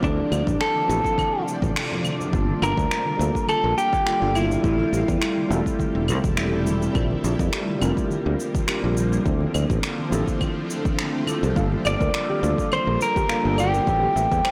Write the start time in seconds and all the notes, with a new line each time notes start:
Already playing: D5 D6
0.00 D2 C3 F3 A3 C4 D4 E4, kick, cabasa
0.05 A4
0.18 high conga
0.32 D2, cabasa, claves
0.47 A1, kick, low conga, cabasa
0.61 A4, finger snap, cabasa
0.75 high conga
0.86 A1 F3 C4 D4 E4, cabasa
0.92 A4
1.05 kick, cabasa
1.18 kick, high conga, cabasa, claves
1.48 cabasa
1.62 A1, kick, high conga, cabasa
1.76 finger snap, cabasa
1.92 low conga
2.04 high conga, cabasa, claves
2.20 low conga, cabasa
2.31 G1 D3 G3 A#3 D4 F4, kick, cabasa
2.36 A5
2.49 high conga
2.62 G1 A#4, cabasa, claves
2.77 D2, kick, cabasa
2.91 finger snap, cabasa
3.06 high conga
3.17 D2 G3 A#3 D4 F4
3.21 A4, cabasa
3.35 kick, cabasa
3.48 A4, high conga, cabasa, claves
3.64 A#1
3.78 G4, cabasa
3.93 kick, high conga, cabasa
4.05 G3 A#3 D4 F4 A4, finger snap, cabasa
4.20 G1 G3 A#3 D4 F4 A4
4.35 E4, high conga, cabasa, claves
4.51 low conga, cabasa
4.61 A1 C3 G3 A3 C4 E4, kick, cabasa
4.66 A4
4.79 high conga
4.93 A1, cabasa
5.08 E2, kick, cabasa
5.22 finger snap, cabasa, claves
5.37 high conga
5.48 E1 G3 A3 C4 E4, cabasa
5.53 A4
5.66 kick, cabasa
5.79 kick, high conga, cabasa
5.95 E1
6.08 C2, cabasa, claves
6.24 E1, kick, high conga, cabasa
6.36 G3 A3 C4 E4 A4, finger snap, cabasa
6.51 G3 A3 C4 E4 A4
6.66 high conga, cabasa
6.81 low conga, cabasa
6.92 A#1 D3 F3 G3 A#3 C4 D4 F4, kick, cabasa, claves
6.97 A#4
7.11 high conga
7.24 A#1, cabasa
7.39 F2, kick, cabasa
7.53 finger snap, cabasa
7.68 high conga
7.79 F1 G3 C4 D4 F4, cabasa, claves
7.84 A#4
7.97 kick, cabasa
8.10 high conga, cabasa
8.26 D2
8.40 cabasa
8.55 kick, high conga, cabasa
8.67 G3 C4 D4 F4 A#4, finger snap, cabasa, claves
8.82 A#1 G3 C4 D4 F4 A#4
8.97 high conga, cabasa
9.12 low conga, cabasa
9.23 D2 F3 A3 C4 D4 E4, kick, cabasa
9.28 A4
9.40 high conga
9.54 D2, cabasa, claves
9.70 A1, kick, cabasa
9.83 finger snap, cabasa
9.99 high conga
10.09 A1 F3 C4 D4 E4, cabasa
10.14 A4
10.28 kick, cabasa
10.41 kick, high conga, cabasa, claves
10.70 cabasa
10.84 kick, high conga, cabasa
10.99 finger snap, cabasa
11.26 F3 C4 D4 E4 A4, high conga, cabasa, claves
11.43 C2, low conga, cabasa
11.54 G1 G3 A#3 D4 F4 F5, kick, cabasa
11.59 A4
11.72 high conga
11.85 G1 D5, cabasa, claves
12.01 D2 A#4, kick, cabasa
12.14 finger snap, cabasa
12.30 G4, high conga
12.40 D2 G3 A#3 D4 F4 F5, cabasa
12.45 A4
12.58 kick, cabasa
12.72 C5 D5, high conga, cabasa, claves
12.87 A#1 A#4
13.01 A#4, cabasa
13.16 G4, kick, high conga, cabasa
13.28 G3 A#3 D4 F4 A4 F5, finger snap, cabasa
13.44 G1 G3 A#3 D4 F4 A4
13.58 G4 D5, high conga, cabasa, claves
13.74 A#4, low conga, cabasa
13.85 A1 C3 G3 A3 C4 E4, kick, cabasa
13.90 A4
14.02 G4, high conga
14.16 A1 E5, cabasa
14.32 E2, kick, cabasa
14.44 C5, finger snap, cabasa, claves